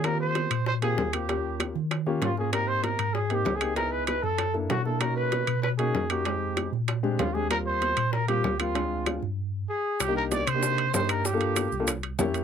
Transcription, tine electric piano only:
X:1
M:4/4
L:1/8
Q:1/4=193
K:Eb
V:1 name="Tine electric piano" clef=bass
E,3 B,,3 E,,2- | E,,3 E,3 A,,2- | A,,3 A,,3 _D,,2- | _D,,3 _G,,3 _C,2- |
_C,3 =B,,3 F,,2- | F,,3 B,,3 E,,2- | E,,3 B,,3 D,,2- | D,,3 G,,3 z2 |
[K:Cm] C,,3 C,3 G,,2- | G,,3 C,,3 F,,2 |]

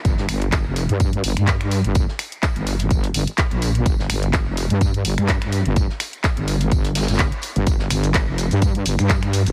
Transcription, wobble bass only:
X:1
M:4/4
L:1/16
Q:"Swing 16ths" 1/4=126
K:Gm
V:1 name="Wobble bass" clef=bass
G,,,2 G,,,3 F,,,2 G,,3 G,,, G,,4 G,,,- | G,,, z4 G,,,3 G,,,2 G,,, z2 B,,,3 | G,,,2 G,,,3 F,,,2 G,,3 G,,, G,,4 G,,,- | G,,, z4 G,,,3 G,,,3 G,,,2 z2 G,,, |
G,,,2 G,,,3 F,,,2 G,,3 G,,, G,,4 G,,, |]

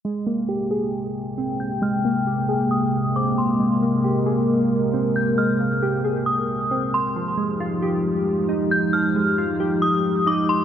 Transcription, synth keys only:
X:1
M:4/4
L:1/8
Q:1/4=135
K:Ab
V:1 name="Synth keys"
A, B, G A3 C2 | A, B, G A3 C2 | A, B, G A3 C2 | A, B, G A3 C2 |
F, A, F G3 E2 | F, A, F G3 E2 |]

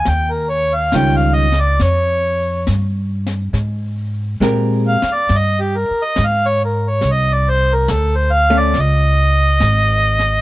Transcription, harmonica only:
X:1
M:4/4
L:1/16
Q:"Swing" 1/4=69
K:Ab
V:1 name="Harmonica"
g B d f g f e =d _d4 z4 | z6 f =d e G B e f _d B d | e =d c B =A c f d e8 |]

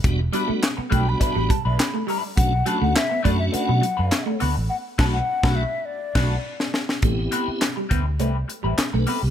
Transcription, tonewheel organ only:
X:1
M:4/4
L:1/16
Q:1/4=103
K:Bphr
V:1 name="Tonewheel organ"
[G,B,DF] z [G,B,DF]2 z2 [F,G,B,DF]4 z6 | [A,^CDF] z [A,CDF]2 z2 [A,CDF]4 z6 | z2 [A,DF]2 z [A,DF]2 z3 [A,DF]2 z4 | [B,CEG]4 z8 z [DB] [CA] [B,G] |]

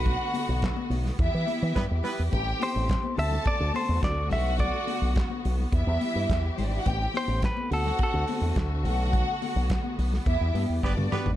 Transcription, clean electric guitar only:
X:1
M:4/4
L:1/8
Q:1/4=106
K:Bphr
V:1 name="Clean electric guitar"
B3 z4 z | z c2 e d c d e | d2 z6 | z c B A A4- |
A6 z2 |]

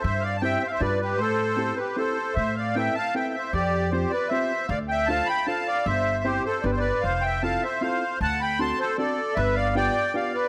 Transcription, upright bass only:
X:1
M:3/4
L:1/8
Q:1/4=154
K:C
V:1 name="Upright bass" clef=bass
G,,4 G,,2 | A,,4 z2 | A,,4 z2 | F,,4 z2 |
D,,4 z2 | G,,,4 G,,,2 | F,,,4 z2 | D,,4 z2 |
G,,,4 z2 |]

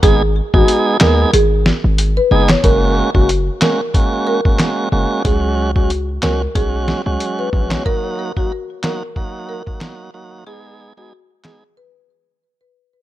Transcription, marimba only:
X:1
M:4/4
L:1/16
Q:"Swing 16ths" 1/4=92
K:G#m
V:1 name="Marimba"
G z2 F z2 A z G3 z2 B z c | A z2 F z2 A z3 A z4 z | G z2 F z2 A z G3 z2 B z c | A z2 F z2 A z3 A z4 z |
G z2 F z2 G z B3 z2 B z B |]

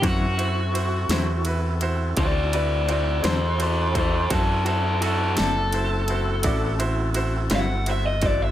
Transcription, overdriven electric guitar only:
X:1
M:12/8
L:1/16
Q:3/8=56
K:D
V:1 name="Overdriven electric guitar"
F8 z4 [Fd]2 [Fd]2 [Fd]2 [A=c]2 [Ac]2 [Ac]2 | [FA]2 [FA]2 [FA]2 A8 z4 f2 e ^d =d e |]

